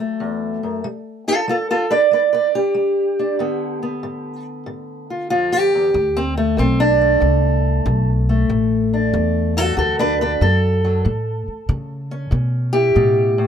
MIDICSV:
0, 0, Header, 1, 4, 480
1, 0, Start_track
1, 0, Tempo, 636943
1, 640, Time_signature, 4, 2, 24, 8
1, 10151, End_track
2, 0, Start_track
2, 0, Title_t, "Steel-string acoustic guitar"
2, 0, Program_c, 0, 25
2, 0, Note_on_c, 0, 38, 67
2, 0, Note_on_c, 0, 54, 43
2, 0, Note_on_c, 0, 57, 45
2, 124, Note_off_c, 0, 38, 0
2, 152, Note_on_c, 0, 40, 56
2, 474, Note_off_c, 0, 40, 0
2, 477, Note_on_c, 0, 42, 58
2, 634, Note_on_c, 0, 55, 71
2, 636, Note_off_c, 0, 42, 0
2, 636, Note_off_c, 0, 57, 0
2, 641, Note_off_c, 0, 54, 0
2, 962, Note_on_c, 0, 65, 75
2, 965, Note_on_c, 0, 69, 89
2, 1042, Note_off_c, 0, 65, 0
2, 1085, Note_off_c, 0, 55, 0
2, 1113, Note_on_c, 0, 55, 69
2, 1121, Note_off_c, 0, 69, 0
2, 1125, Note_on_c, 0, 65, 74
2, 1134, Note_on_c, 0, 69, 87
2, 1174, Note_off_c, 0, 65, 0
2, 1279, Note_off_c, 0, 69, 0
2, 1285, Note_on_c, 0, 65, 75
2, 1288, Note_on_c, 0, 69, 88
2, 1390, Note_off_c, 0, 65, 0
2, 1436, Note_on_c, 0, 71, 82
2, 1439, Note_on_c, 0, 62, 43
2, 1443, Note_off_c, 0, 69, 0
2, 1443, Note_on_c, 0, 74, 85
2, 1518, Note_off_c, 0, 71, 0
2, 1564, Note_off_c, 0, 55, 0
2, 1592, Note_on_c, 0, 55, 61
2, 1597, Note_off_c, 0, 74, 0
2, 1605, Note_on_c, 0, 74, 71
2, 1608, Note_on_c, 0, 71, 67
2, 1654, Note_off_c, 0, 71, 0
2, 1751, Note_off_c, 0, 74, 0
2, 1754, Note_on_c, 0, 71, 69
2, 1767, Note_on_c, 0, 74, 81
2, 1864, Note_off_c, 0, 71, 0
2, 1919, Note_off_c, 0, 62, 0
2, 1922, Note_on_c, 0, 62, 44
2, 1923, Note_off_c, 0, 74, 0
2, 1923, Note_on_c, 0, 67, 89
2, 2044, Note_off_c, 0, 55, 0
2, 2069, Note_on_c, 0, 55, 62
2, 2404, Note_off_c, 0, 62, 0
2, 2407, Note_on_c, 0, 62, 44
2, 2523, Note_off_c, 0, 55, 0
2, 2556, Note_on_c, 0, 44, 73
2, 2560, Note_off_c, 0, 62, 0
2, 2562, Note_on_c, 0, 50, 54
2, 2564, Note_on_c, 0, 59, 48
2, 2874, Note_off_c, 0, 59, 0
2, 2883, Note_on_c, 0, 59, 44
2, 3007, Note_off_c, 0, 44, 0
2, 3038, Note_on_c, 0, 44, 66
2, 3361, Note_off_c, 0, 67, 0
2, 3488, Note_off_c, 0, 44, 0
2, 3513, Note_on_c, 0, 44, 65
2, 3846, Note_on_c, 0, 65, 46
2, 3966, Note_off_c, 0, 44, 0
2, 3986, Note_off_c, 0, 65, 0
2, 3996, Note_on_c, 0, 65, 98
2, 3998, Note_on_c, 0, 41, 58
2, 4158, Note_off_c, 0, 65, 0
2, 4162, Note_on_c, 0, 67, 78
2, 4324, Note_off_c, 0, 41, 0
2, 4330, Note_on_c, 0, 40, 61
2, 4463, Note_off_c, 0, 59, 0
2, 4477, Note_off_c, 0, 40, 0
2, 4480, Note_on_c, 0, 38, 79
2, 4643, Note_off_c, 0, 67, 0
2, 4646, Note_on_c, 0, 60, 96
2, 4801, Note_off_c, 0, 60, 0
2, 4804, Note_on_c, 0, 57, 77
2, 4930, Note_off_c, 0, 38, 0
2, 4951, Note_on_c, 0, 38, 75
2, 4963, Note_off_c, 0, 57, 0
2, 4968, Note_on_c, 0, 60, 95
2, 5125, Note_off_c, 0, 60, 0
2, 5125, Note_on_c, 0, 62, 99
2, 5286, Note_on_c, 0, 57, 45
2, 5407, Note_off_c, 0, 38, 0
2, 5428, Note_on_c, 0, 38, 76
2, 5885, Note_off_c, 0, 38, 0
2, 5924, Note_on_c, 0, 38, 69
2, 6085, Note_off_c, 0, 62, 0
2, 6246, Note_off_c, 0, 57, 0
2, 6249, Note_on_c, 0, 57, 47
2, 6373, Note_off_c, 0, 38, 0
2, 6401, Note_on_c, 0, 38, 71
2, 6406, Note_off_c, 0, 50, 0
2, 6734, Note_on_c, 0, 62, 42
2, 6852, Note_off_c, 0, 38, 0
2, 6886, Note_on_c, 0, 38, 65
2, 7211, Note_on_c, 0, 66, 86
2, 7217, Note_off_c, 0, 62, 0
2, 7217, Note_on_c, 0, 69, 94
2, 7218, Note_off_c, 0, 57, 0
2, 7221, Note_on_c, 0, 54, 46
2, 7334, Note_off_c, 0, 38, 0
2, 7350, Note_off_c, 0, 66, 0
2, 7360, Note_on_c, 0, 66, 74
2, 7361, Note_on_c, 0, 38, 65
2, 7365, Note_off_c, 0, 69, 0
2, 7374, Note_on_c, 0, 69, 83
2, 7522, Note_off_c, 0, 66, 0
2, 7528, Note_off_c, 0, 69, 0
2, 7531, Note_on_c, 0, 62, 89
2, 7538, Note_on_c, 0, 71, 103
2, 7636, Note_off_c, 0, 62, 0
2, 7688, Note_off_c, 0, 71, 0
2, 7696, Note_on_c, 0, 71, 85
2, 7701, Note_on_c, 0, 62, 73
2, 7773, Note_off_c, 0, 62, 0
2, 7812, Note_off_c, 0, 38, 0
2, 7845, Note_on_c, 0, 38, 62
2, 7851, Note_off_c, 0, 71, 0
2, 7853, Note_on_c, 0, 69, 92
2, 8164, Note_off_c, 0, 54, 0
2, 8173, Note_on_c, 0, 54, 50
2, 8293, Note_off_c, 0, 38, 0
2, 8325, Note_on_c, 0, 45, 74
2, 8327, Note_off_c, 0, 54, 0
2, 8773, Note_off_c, 0, 45, 0
2, 8807, Note_on_c, 0, 45, 66
2, 9129, Note_on_c, 0, 61, 44
2, 9253, Note_off_c, 0, 45, 0
2, 9276, Note_on_c, 0, 45, 71
2, 9287, Note_off_c, 0, 69, 0
2, 9591, Note_on_c, 0, 67, 101
2, 9604, Note_on_c, 0, 64, 44
2, 9727, Note_off_c, 0, 45, 0
2, 9761, Note_on_c, 0, 47, 62
2, 10081, Note_off_c, 0, 47, 0
2, 10084, Note_on_c, 0, 45, 69
2, 10151, Note_off_c, 0, 45, 0
2, 10151, Note_off_c, 0, 61, 0
2, 10151, Note_off_c, 0, 64, 0
2, 10151, Note_off_c, 0, 67, 0
2, 10151, End_track
3, 0, Start_track
3, 0, Title_t, "Upright bass"
3, 0, Program_c, 1, 32
3, 4478, Note_on_c, 1, 38, 88
3, 4946, Note_off_c, 1, 38, 0
3, 4961, Note_on_c, 1, 35, 86
3, 5428, Note_off_c, 1, 35, 0
3, 5437, Note_on_c, 1, 36, 81
3, 5907, Note_off_c, 1, 36, 0
3, 5921, Note_on_c, 1, 35, 93
3, 6389, Note_off_c, 1, 35, 0
3, 6403, Note_on_c, 1, 33, 80
3, 6870, Note_off_c, 1, 33, 0
3, 6884, Note_on_c, 1, 40, 88
3, 7351, Note_off_c, 1, 40, 0
3, 7364, Note_on_c, 1, 38, 80
3, 7830, Note_off_c, 1, 38, 0
3, 7846, Note_on_c, 1, 42, 81
3, 8311, Note_off_c, 1, 42, 0
3, 8330, Note_on_c, 1, 45, 81
3, 8628, Note_off_c, 1, 45, 0
3, 8808, Note_on_c, 1, 49, 94
3, 9271, Note_off_c, 1, 49, 0
3, 9284, Note_on_c, 1, 47, 85
3, 9747, Note_off_c, 1, 47, 0
3, 9766, Note_on_c, 1, 45, 94
3, 10151, Note_off_c, 1, 45, 0
3, 10151, End_track
4, 0, Start_track
4, 0, Title_t, "Muted upright bass strokes"
4, 8650, Note_on_c, 9, 29, 36
4, 8725, Note_off_c, 9, 29, 0
4, 10151, End_track
0, 0, End_of_file